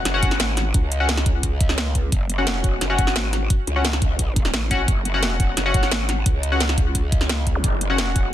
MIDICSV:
0, 0, Header, 1, 5, 480
1, 0, Start_track
1, 0, Tempo, 344828
1, 1034, Time_signature, 4, 2, 24, 8
1, 11606, End_track
2, 0, Start_track
2, 0, Title_t, "Synth stab"
2, 0, Program_c, 0, 62
2, 0, Note_on_c, 0, 61, 84
2, 0, Note_on_c, 0, 66, 77
2, 0, Note_on_c, 0, 78, 93
2, 165, Note_off_c, 0, 61, 0
2, 165, Note_off_c, 0, 66, 0
2, 165, Note_off_c, 0, 78, 0
2, 195, Note_on_c, 0, 61, 91
2, 195, Note_on_c, 0, 66, 81
2, 195, Note_on_c, 0, 78, 104
2, 1366, Note_off_c, 0, 61, 0
2, 1366, Note_off_c, 0, 66, 0
2, 1366, Note_off_c, 0, 78, 0
2, 1394, Note_on_c, 0, 66, 69
2, 1395, Note_on_c, 0, 61, 75
2, 1395, Note_on_c, 0, 78, 85
2, 1532, Note_off_c, 0, 61, 0
2, 1532, Note_off_c, 0, 66, 0
2, 1532, Note_off_c, 0, 78, 0
2, 3315, Note_on_c, 0, 61, 80
2, 3315, Note_on_c, 0, 66, 78
2, 3315, Note_on_c, 0, 78, 89
2, 4006, Note_off_c, 0, 61, 0
2, 4006, Note_off_c, 0, 66, 0
2, 4006, Note_off_c, 0, 78, 0
2, 4034, Note_on_c, 0, 61, 94
2, 4034, Note_on_c, 0, 66, 81
2, 4034, Note_on_c, 0, 78, 99
2, 5205, Note_off_c, 0, 61, 0
2, 5205, Note_off_c, 0, 66, 0
2, 5205, Note_off_c, 0, 78, 0
2, 5233, Note_on_c, 0, 61, 70
2, 5233, Note_on_c, 0, 78, 81
2, 5234, Note_on_c, 0, 66, 68
2, 5371, Note_off_c, 0, 61, 0
2, 5371, Note_off_c, 0, 66, 0
2, 5371, Note_off_c, 0, 78, 0
2, 6554, Note_on_c, 0, 66, 95
2, 6554, Note_on_c, 0, 78, 109
2, 6555, Note_on_c, 0, 61, 106
2, 6691, Note_off_c, 0, 66, 0
2, 6691, Note_off_c, 0, 78, 0
2, 6692, Note_off_c, 0, 61, 0
2, 7154, Note_on_c, 0, 78, 95
2, 7155, Note_on_c, 0, 61, 81
2, 7155, Note_on_c, 0, 66, 82
2, 7845, Note_off_c, 0, 61, 0
2, 7845, Note_off_c, 0, 78, 0
2, 7846, Note_off_c, 0, 66, 0
2, 7875, Note_on_c, 0, 61, 91
2, 7875, Note_on_c, 0, 66, 82
2, 7875, Note_on_c, 0, 78, 104
2, 9046, Note_off_c, 0, 61, 0
2, 9046, Note_off_c, 0, 66, 0
2, 9046, Note_off_c, 0, 78, 0
2, 9074, Note_on_c, 0, 61, 73
2, 9074, Note_on_c, 0, 66, 67
2, 9074, Note_on_c, 0, 78, 84
2, 9211, Note_off_c, 0, 66, 0
2, 9211, Note_off_c, 0, 78, 0
2, 9212, Note_off_c, 0, 61, 0
2, 10994, Note_on_c, 0, 61, 86
2, 10994, Note_on_c, 0, 78, 93
2, 10995, Note_on_c, 0, 66, 77
2, 11606, Note_off_c, 0, 61, 0
2, 11606, Note_off_c, 0, 66, 0
2, 11606, Note_off_c, 0, 78, 0
2, 11606, End_track
3, 0, Start_track
3, 0, Title_t, "Wobble bass"
3, 0, Program_c, 1, 39
3, 74, Note_on_c, 1, 30, 97
3, 535, Note_off_c, 1, 30, 0
3, 555, Note_on_c, 1, 32, 99
3, 1015, Note_off_c, 1, 32, 0
3, 1035, Note_on_c, 1, 37, 97
3, 2936, Note_off_c, 1, 37, 0
3, 2955, Note_on_c, 1, 30, 97
3, 3655, Note_off_c, 1, 30, 0
3, 3674, Note_on_c, 1, 28, 97
3, 3895, Note_off_c, 1, 28, 0
3, 3916, Note_on_c, 1, 30, 101
3, 4376, Note_off_c, 1, 30, 0
3, 4395, Note_on_c, 1, 32, 100
3, 4855, Note_off_c, 1, 32, 0
3, 5113, Note_on_c, 1, 37, 99
3, 6294, Note_off_c, 1, 37, 0
3, 6314, Note_on_c, 1, 33, 95
3, 6775, Note_off_c, 1, 33, 0
3, 6794, Note_on_c, 1, 30, 98
3, 7495, Note_off_c, 1, 30, 0
3, 7515, Note_on_c, 1, 28, 103
3, 7735, Note_off_c, 1, 28, 0
3, 7755, Note_on_c, 1, 30, 97
3, 8215, Note_off_c, 1, 30, 0
3, 8234, Note_on_c, 1, 32, 94
3, 8695, Note_off_c, 1, 32, 0
3, 8713, Note_on_c, 1, 37, 101
3, 10615, Note_off_c, 1, 37, 0
3, 10634, Note_on_c, 1, 30, 98
3, 11335, Note_off_c, 1, 30, 0
3, 11354, Note_on_c, 1, 28, 103
3, 11575, Note_off_c, 1, 28, 0
3, 11606, End_track
4, 0, Start_track
4, 0, Title_t, "Zap"
4, 0, Program_c, 2, 103
4, 10514, Note_on_c, 2, 60, 66
4, 10634, Note_off_c, 2, 60, 0
4, 11606, End_track
5, 0, Start_track
5, 0, Title_t, "Drums"
5, 75, Note_on_c, 9, 40, 57
5, 75, Note_on_c, 9, 42, 93
5, 214, Note_off_c, 9, 40, 0
5, 214, Note_off_c, 9, 42, 0
5, 315, Note_on_c, 9, 36, 104
5, 315, Note_on_c, 9, 42, 71
5, 435, Note_on_c, 9, 40, 52
5, 454, Note_off_c, 9, 36, 0
5, 454, Note_off_c, 9, 42, 0
5, 554, Note_on_c, 9, 38, 122
5, 554, Note_on_c, 9, 42, 106
5, 574, Note_off_c, 9, 40, 0
5, 693, Note_off_c, 9, 38, 0
5, 693, Note_off_c, 9, 42, 0
5, 794, Note_on_c, 9, 40, 36
5, 794, Note_on_c, 9, 42, 69
5, 934, Note_off_c, 9, 40, 0
5, 934, Note_off_c, 9, 42, 0
5, 1034, Note_on_c, 9, 42, 94
5, 1035, Note_on_c, 9, 36, 125
5, 1173, Note_off_c, 9, 42, 0
5, 1174, Note_off_c, 9, 36, 0
5, 1275, Note_on_c, 9, 42, 67
5, 1414, Note_off_c, 9, 42, 0
5, 1514, Note_on_c, 9, 38, 124
5, 1514, Note_on_c, 9, 42, 89
5, 1635, Note_on_c, 9, 40, 60
5, 1654, Note_off_c, 9, 38, 0
5, 1654, Note_off_c, 9, 42, 0
5, 1754, Note_on_c, 9, 42, 64
5, 1755, Note_on_c, 9, 36, 110
5, 1774, Note_off_c, 9, 40, 0
5, 1894, Note_off_c, 9, 36, 0
5, 1894, Note_off_c, 9, 42, 0
5, 1994, Note_on_c, 9, 42, 95
5, 1995, Note_on_c, 9, 36, 63
5, 2134, Note_off_c, 9, 36, 0
5, 2134, Note_off_c, 9, 42, 0
5, 2235, Note_on_c, 9, 36, 111
5, 2235, Note_on_c, 9, 42, 70
5, 2355, Note_on_c, 9, 40, 55
5, 2374, Note_off_c, 9, 36, 0
5, 2374, Note_off_c, 9, 42, 0
5, 2475, Note_on_c, 9, 38, 126
5, 2475, Note_on_c, 9, 42, 99
5, 2494, Note_off_c, 9, 40, 0
5, 2614, Note_off_c, 9, 38, 0
5, 2614, Note_off_c, 9, 42, 0
5, 2715, Note_on_c, 9, 36, 66
5, 2715, Note_on_c, 9, 42, 66
5, 2854, Note_off_c, 9, 36, 0
5, 2854, Note_off_c, 9, 42, 0
5, 2955, Note_on_c, 9, 36, 124
5, 2955, Note_on_c, 9, 42, 90
5, 3094, Note_off_c, 9, 36, 0
5, 3095, Note_off_c, 9, 42, 0
5, 3195, Note_on_c, 9, 42, 65
5, 3335, Note_off_c, 9, 42, 0
5, 3436, Note_on_c, 9, 38, 124
5, 3436, Note_on_c, 9, 42, 90
5, 3575, Note_off_c, 9, 38, 0
5, 3575, Note_off_c, 9, 42, 0
5, 3675, Note_on_c, 9, 36, 110
5, 3676, Note_on_c, 9, 42, 66
5, 3814, Note_off_c, 9, 36, 0
5, 3815, Note_off_c, 9, 42, 0
5, 3915, Note_on_c, 9, 40, 56
5, 3915, Note_on_c, 9, 42, 90
5, 4054, Note_off_c, 9, 40, 0
5, 4054, Note_off_c, 9, 42, 0
5, 4155, Note_on_c, 9, 36, 109
5, 4156, Note_on_c, 9, 42, 68
5, 4276, Note_on_c, 9, 40, 54
5, 4294, Note_off_c, 9, 36, 0
5, 4295, Note_off_c, 9, 42, 0
5, 4395, Note_on_c, 9, 38, 127
5, 4395, Note_on_c, 9, 42, 91
5, 4415, Note_off_c, 9, 40, 0
5, 4534, Note_off_c, 9, 38, 0
5, 4534, Note_off_c, 9, 42, 0
5, 4635, Note_on_c, 9, 40, 35
5, 4635, Note_on_c, 9, 42, 67
5, 4774, Note_off_c, 9, 40, 0
5, 4774, Note_off_c, 9, 42, 0
5, 4874, Note_on_c, 9, 36, 124
5, 4874, Note_on_c, 9, 42, 85
5, 5014, Note_off_c, 9, 36, 0
5, 5014, Note_off_c, 9, 42, 0
5, 5114, Note_on_c, 9, 42, 62
5, 5253, Note_off_c, 9, 42, 0
5, 5354, Note_on_c, 9, 38, 121
5, 5354, Note_on_c, 9, 42, 89
5, 5474, Note_on_c, 9, 40, 58
5, 5493, Note_off_c, 9, 38, 0
5, 5493, Note_off_c, 9, 42, 0
5, 5594, Note_on_c, 9, 36, 112
5, 5594, Note_on_c, 9, 42, 62
5, 5613, Note_off_c, 9, 40, 0
5, 5733, Note_off_c, 9, 42, 0
5, 5734, Note_off_c, 9, 36, 0
5, 5833, Note_on_c, 9, 42, 87
5, 5834, Note_on_c, 9, 36, 64
5, 5973, Note_off_c, 9, 36, 0
5, 5973, Note_off_c, 9, 42, 0
5, 6074, Note_on_c, 9, 36, 109
5, 6074, Note_on_c, 9, 42, 67
5, 6194, Note_on_c, 9, 40, 49
5, 6213, Note_off_c, 9, 36, 0
5, 6213, Note_off_c, 9, 42, 0
5, 6314, Note_on_c, 9, 38, 125
5, 6314, Note_on_c, 9, 42, 89
5, 6333, Note_off_c, 9, 40, 0
5, 6453, Note_off_c, 9, 38, 0
5, 6453, Note_off_c, 9, 42, 0
5, 6554, Note_on_c, 9, 36, 66
5, 6554, Note_on_c, 9, 42, 65
5, 6693, Note_off_c, 9, 36, 0
5, 6694, Note_off_c, 9, 42, 0
5, 6794, Note_on_c, 9, 36, 124
5, 6794, Note_on_c, 9, 42, 90
5, 6933, Note_off_c, 9, 36, 0
5, 6934, Note_off_c, 9, 42, 0
5, 7035, Note_on_c, 9, 42, 63
5, 7174, Note_off_c, 9, 42, 0
5, 7275, Note_on_c, 9, 38, 115
5, 7275, Note_on_c, 9, 42, 87
5, 7414, Note_off_c, 9, 38, 0
5, 7414, Note_off_c, 9, 42, 0
5, 7514, Note_on_c, 9, 36, 107
5, 7515, Note_on_c, 9, 42, 62
5, 7653, Note_off_c, 9, 36, 0
5, 7654, Note_off_c, 9, 42, 0
5, 7754, Note_on_c, 9, 40, 52
5, 7754, Note_on_c, 9, 42, 92
5, 7893, Note_off_c, 9, 40, 0
5, 7893, Note_off_c, 9, 42, 0
5, 7994, Note_on_c, 9, 36, 111
5, 7994, Note_on_c, 9, 42, 67
5, 8114, Note_on_c, 9, 40, 47
5, 8133, Note_off_c, 9, 36, 0
5, 8133, Note_off_c, 9, 42, 0
5, 8234, Note_on_c, 9, 38, 127
5, 8234, Note_on_c, 9, 42, 89
5, 8253, Note_off_c, 9, 40, 0
5, 8373, Note_off_c, 9, 38, 0
5, 8373, Note_off_c, 9, 42, 0
5, 8474, Note_on_c, 9, 40, 32
5, 8474, Note_on_c, 9, 42, 64
5, 8614, Note_off_c, 9, 40, 0
5, 8614, Note_off_c, 9, 42, 0
5, 8713, Note_on_c, 9, 42, 92
5, 8714, Note_on_c, 9, 36, 113
5, 8853, Note_off_c, 9, 36, 0
5, 8853, Note_off_c, 9, 42, 0
5, 8954, Note_on_c, 9, 42, 67
5, 9093, Note_off_c, 9, 42, 0
5, 9194, Note_on_c, 9, 38, 111
5, 9194, Note_on_c, 9, 42, 87
5, 9314, Note_on_c, 9, 40, 57
5, 9333, Note_off_c, 9, 38, 0
5, 9333, Note_off_c, 9, 42, 0
5, 9434, Note_on_c, 9, 36, 103
5, 9434, Note_on_c, 9, 42, 63
5, 9453, Note_off_c, 9, 40, 0
5, 9573, Note_off_c, 9, 36, 0
5, 9573, Note_off_c, 9, 42, 0
5, 9674, Note_on_c, 9, 36, 61
5, 9674, Note_on_c, 9, 42, 91
5, 9813, Note_off_c, 9, 36, 0
5, 9813, Note_off_c, 9, 42, 0
5, 9914, Note_on_c, 9, 36, 102
5, 9914, Note_on_c, 9, 42, 67
5, 10034, Note_on_c, 9, 40, 48
5, 10053, Note_off_c, 9, 36, 0
5, 10053, Note_off_c, 9, 42, 0
5, 10154, Note_on_c, 9, 38, 121
5, 10154, Note_on_c, 9, 42, 97
5, 10173, Note_off_c, 9, 40, 0
5, 10293, Note_off_c, 9, 38, 0
5, 10293, Note_off_c, 9, 42, 0
5, 10394, Note_on_c, 9, 36, 63
5, 10394, Note_on_c, 9, 42, 63
5, 10533, Note_off_c, 9, 36, 0
5, 10533, Note_off_c, 9, 42, 0
5, 10634, Note_on_c, 9, 36, 108
5, 10634, Note_on_c, 9, 42, 100
5, 10773, Note_off_c, 9, 36, 0
5, 10773, Note_off_c, 9, 42, 0
5, 10874, Note_on_c, 9, 42, 68
5, 11013, Note_off_c, 9, 42, 0
5, 11114, Note_on_c, 9, 38, 112
5, 11114, Note_on_c, 9, 42, 90
5, 11253, Note_off_c, 9, 38, 0
5, 11253, Note_off_c, 9, 42, 0
5, 11354, Note_on_c, 9, 36, 99
5, 11354, Note_on_c, 9, 42, 69
5, 11493, Note_off_c, 9, 36, 0
5, 11493, Note_off_c, 9, 42, 0
5, 11606, End_track
0, 0, End_of_file